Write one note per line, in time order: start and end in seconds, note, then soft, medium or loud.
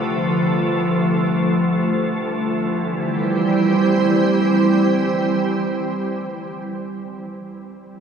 0.00 2.63 C2 medium
0.00 2.62 D3 medium
0.00 2.62 F3 medium
0.00 2.62 A3 medium
0.00 2.62 G4 medium
0.00 2.62 B4 medium
2.62 6.71 E3 medium
2.75 6.72 G3 medium
2.88 6.72 C4 medium
2.99 6.71 G4 medium
3.12 6.71 C5 medium